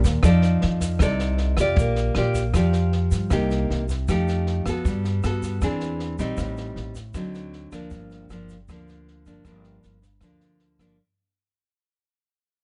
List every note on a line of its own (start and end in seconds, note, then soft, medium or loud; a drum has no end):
0.00 0.22 A#2 medium
0.04 0.22 D#2 medium
0.04 kick soft
0.04 snare soft
0.04 shaker medium
0.23 0.59 F2 medium
0.23 0.99 F3 medium
0.23 0.98 D#4 medium
0.23 0.98 A4 medium
0.23 0.98 D5 soft
0.23 kick medium
0.23 cross-stick medium
0.23 snare soft
0.23 shaker medium
0.42 snare soft
0.42 shaker soft
0.61 0.98 F2 medium
0.61 snare soft
0.80 kick soft
0.80 snare soft
0.80 shaker medium
0.99 1.54 C2 medium
0.99 1.76 C3 medium
0.99 1.56 D#4 medium
0.99 1.56 A4 medium
0.99 1.56 D5 medium
0.99 kick medium
0.99 cross-stick medium
0.99 snare soft
0.99 shaker medium
1.19 snare soft
1.19 shaker soft
1.38 snare soft
1.57 1.76 F2 medium
1.57 2.14 F4 medium
1.57 2.14 G4 medium
1.57 kick soft
1.57 cross-stick medium
1.57 snare soft
1.57 shaker medium
1.61 2.14 D5 medium
1.75 2.13 A#1 medium
1.75 2.53 A#3 medium
1.75 kick medium
1.75 snare soft
1.75 shaker medium
1.96 snare soft
1.96 shaker soft
2.15 2.51 A#1 medium
2.15 2.41 F4 medium
2.15 2.42 G4 medium
2.15 2.42 D5 medium
2.15 cross-stick medium
2.15 snare soft
2.34 kick soft
2.34 snare soft
2.34 shaker medium
2.54 3.08 F2 medium
2.54 3.30 F3 medium
2.54 3.29 F4 medium
2.54 3.29 G4 medium
2.54 3.29 D5 medium
2.54 kick medium
2.54 cross-stick medium
2.54 snare soft
2.54 shaker medium
2.73 snare soft
2.73 shaker soft
2.92 snare soft
3.11 3.29 G2 medium
3.11 kick soft
3.11 snare soft
3.11 shaker medium
3.30 3.67 C2 medium
3.30 4.07 C3 medium
3.30 3.83 A#3 soft
3.30 3.83 D#4 medium
3.30 3.84 G4 medium
3.30 kick medium
3.30 cross-stick medium
3.30 snare soft
3.30 shaker medium
3.50 snare soft
3.50 shaker soft
3.70 4.06 C2 medium
3.70 snare soft
3.89 kick soft
3.89 snare soft
3.89 shaker medium
4.08 4.62 F2 medium
4.08 4.84 F3 medium
4.08 4.63 A3 soft
4.08 4.64 D#4 medium
4.08 4.63 G4 medium
4.08 kick medium
4.08 cross-stick medium
4.08 snare soft
4.08 shaker medium
4.28 snare soft
4.28 shaker soft
4.47 snare soft
4.66 4.84 F2 medium
4.66 5.21 B3 medium
4.66 5.22 F#4 medium
4.66 5.22 A4 medium
4.66 kick soft
4.66 cross-stick medium
4.66 snare soft
4.66 shaker medium
4.85 5.21 G2 medium
4.85 5.61 G3 medium
4.85 kick medium
4.85 snare soft
4.85 shaker medium
5.05 snare soft
5.05 shaker soft
5.23 5.59 G2 medium
5.23 5.59 B3 medium
5.23 5.60 F#4 medium
5.23 5.60 A4 medium
5.23 cross-stick medium
5.23 snare soft
5.23 shaker medium
5.43 kick soft
5.43 snare soft
5.43 shaker medium
5.61 6.15 E2 medium
5.61 6.19 E3 medium
5.61 6.17 C4 medium
5.61 6.17 D4 medium
5.61 6.17 G#4 medium
5.61 kick medium
5.61 cross-stick medium
5.61 snare soft
5.61 shaker medium
5.80 snare soft
5.80 shaker soft
5.99 snare soft
6.19 6.37 A#1 medium
6.19 6.93 G3 medium
6.19 6.93 C4 medium
6.19 6.94 D#4 medium
6.19 kick soft
6.19 snare soft
6.19 shaker medium
6.37 6.74 A1 medium
6.37 7.13 A2 soft
6.37 kick medium
6.37 cross-stick medium
6.37 snare soft
6.37 shaker medium
6.57 snare soft
6.57 shaker soft
6.76 7.12 A1 medium
6.76 snare soft
6.95 kick soft
6.95 snare soft
6.95 shaker medium
7.14 7.68 D2 medium
7.14 7.90 D3 medium
7.14 7.70 F#3 medium
7.14 7.70 C4 medium
7.14 7.70 D#4 medium
7.14 kick medium
7.14 cross-stick medium
7.14 snare soft
7.14 shaker medium
7.34 snare soft
7.34 shaker soft
7.53 snare soft
7.72 7.90 D2 medium
7.72 8.27 F3 medium
7.72 8.27 A#3 medium
7.72 8.27 D4 medium
7.72 kick soft
7.72 cross-stick medium
7.72 snare soft
7.72 shaker medium
7.91 8.27 G1 medium
7.91 8.67 G2 medium
7.91 kick medium
7.91 snare soft
7.91 shaker medium
8.11 snare soft
8.11 shaker soft
8.29 8.66 G1 medium
8.29 8.55 F3 medium
8.29 8.56 A#3 medium
8.29 8.56 D4 medium
8.29 cross-stick medium
8.29 snare soft
8.29 shaker medium
8.49 kick soft
8.49 snare soft
8.49 shaker medium
8.68 9.22 D2 medium
8.68 9.44 D3 medium
8.68 9.24 F3 medium
8.68 9.24 A#3 medium
8.68 9.24 D4 medium
8.68 kick medium
8.68 cross-stick medium
8.68 snare soft
8.68 shaker medium
8.88 snare soft
8.88 shaker soft
9.08 snare soft
9.26 9.44 G1 medium
9.26 9.43 F3 medium
9.26 9.43 A#3 medium
9.26 9.43 D4 medium
9.26 kick soft
9.26 snare soft
9.26 shaker medium
9.45 9.81 G1 medium
9.45 10.21 G2 medium
9.45 9.98 F3 soft
9.45 9.98 A#3 medium
9.45 9.98 D4 medium
9.45 kick medium
9.45 cross-stick medium
9.45 snare soft
9.45 shaker medium
9.64 snare soft
9.64 shaker soft
9.83 10.20 G1 medium
9.83 snare soft
9.83 shaker soft
10.02 kick soft
10.02 snare soft
10.02 shaker medium
10.21 10.76 D2 medium
10.21 10.97 D3 medium
10.21 10.77 F3 medium
10.21 10.77 A#3 soft
10.21 10.77 D4 medium
10.21 kick medium
10.21 cross-stick medium
10.21 snare soft
10.21 shaker medium
10.40 snare soft
10.40 shaker soft
10.59 snare soft
10.79 10.98 G1 medium
10.79 10.96 F3 medium
10.79 10.96 A#3 medium
10.79 10.96 D4 medium
10.79 kick soft
10.79 cross-stick medium
10.79 snare soft
10.79 shaker medium